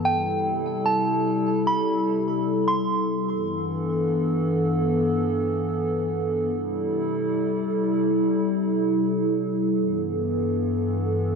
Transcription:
0.05 C3 G3 E4 A4 G5
0.86 A5
1.67 B5
2.68 C6
3.29 G2 E3 B3 A4
6.54 C3 G3 E4 A4
9.78 G2 E3 B3

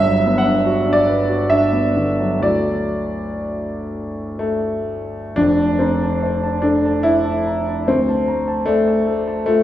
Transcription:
Already playing: G1 G2 E5
0.06 F#3
0.26 B3
0.38 F#5
0.45 D4
0.66 F#4
0.87 D4
0.93 D5
1.07 B4
1.29 F#4
1.50 D4 E5
1.73 B3
1.97 D3
2.20 F#3
2.39 D2 F#3 A3 E4 D5
2.43 F#4
4.39 A3
5.36 F1 F2 D4
5.59 A5
5.79 C4 A#5
6.02 A5
6.23 C5
6.43 A5
6.62 D4 A4
6.85 A5
7.03 E4
7.25 A5
7.47 A#5
7.68 A5
7.88 D2 C4
8.09 A5
8.28 A#5
8.48 A5
8.66 A3 D5
8.88 A5
9.07 A4
9.28 A5
9.46 A3 F4

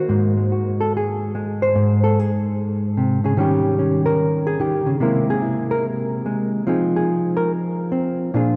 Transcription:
Already playing: F#4
0.09 G#2 G#3
0.37 G#3
0.52 F#4
0.81 A4
0.97 G#4
1.35 G#3
1.62 C5
1.75 G#2
2.04 A4
2.19 G#4
2.97 C3
3.24 C#3 G#4
3.37 D#3 G3 C#4 G4
3.79 C#4
4.06 A#4
4.47 G#4
4.60 D#3 G4
4.86 C#3
5.00 C3 G#3 A#3 E4 A#4
5.30 G#4
5.42 E4
5.71 A#4
6.26 G#3
6.67 F3 C4 D#4 G#4
6.96 G#4
7.37 A#4
7.92 C4
8.34 A#2 F3 D4 F4 G#4

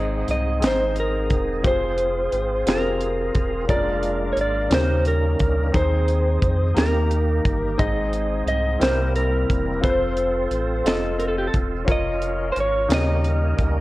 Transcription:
Already playing: G#1 G#2 C4 D#4 G#4 C5 D#5
0.28 C2 D#5, closed hi-hat
0.60 G#1 C4 D#4 G#4 D#5, snare, closed hi-hat
0.67 C5
0.96 closed hi-hat
1.00 A#4
1.30 E1, kick, closed hi-hat
1.63 F1 C4 F4 G4 C5, kick, closed hi-hat
1.68 G#4 C5
1.98 closed hi-hat
2.32 G#1, closed hi-hat
2.66 F1 C4 F4 G4 A#4 C5, snare, closed hi-hat
2.74 G#4
3.01 closed hi-hat
3.35 E1, kick, closed hi-hat
3.68 F1 G#3 A#3 C#4 D4 F4 G#4 A#4 D5, kick, closed hi-hat
3.74 D4
4.03 closed hi-hat
4.33 G#1 C#5
4.37 closed hi-hat
4.41 D5
4.69 D#2 C#3 G3 C#4 D#4 F#4 A#4, snare, closed hi-hat
4.74 G4 C5
5.05 A#4, closed hi-hat
5.39 D2, kick, closed hi-hat
5.72 D#2 D#3 C4 D#4 G#4 A#4 C5, kick, closed hi-hat
5.82 C5
6.08 closed hi-hat
6.42 F2, kick, closed hi-hat
6.75 D#2 D#3 A#3 D#4 G4 A#4, snare, closed hi-hat
7.11 closed hi-hat
7.45 G1, kick, closed hi-hat
7.78 G#1 G#2 C4 D#4 G#4 C5 D#5, kick, closed hi-hat
8.13 closed hi-hat
8.46 C2 D#5, closed hi-hat
8.79 C2 C3 G3 A#3 C4 E4 G4 A#4 C5, closed hi-hat
8.83 snare
9.16 A#4, closed hi-hat
9.50 E1, kick, closed hi-hat
9.81 F1 C4 F4 A4 B4 C5, kick, closed hi-hat
9.90 C5
10.17 closed hi-hat
10.51 A1, closed hi-hat
10.84 F1 C4 F4 A4 D#5, closed hi-hat
10.88 snare
11.19 A#4, closed hi-hat
11.28 A4
11.38 G4
11.47 A4
11.54 E1, kick, closed hi-hat
11.85 F1 C#4 F4 A#4 C#5, kick, closed hi-hat
11.92 D#5
12.22 closed hi-hat
12.52 C5, closed hi-hat
12.56 G#1 C#5
12.89 D#2 C#3 G3 A#3 C#4 D#4 F4 A#4 C#5, snare, closed hi-hat
12.94 G4 D#5
13.24 closed hi-hat
13.58 D2, kick, closed hi-hat

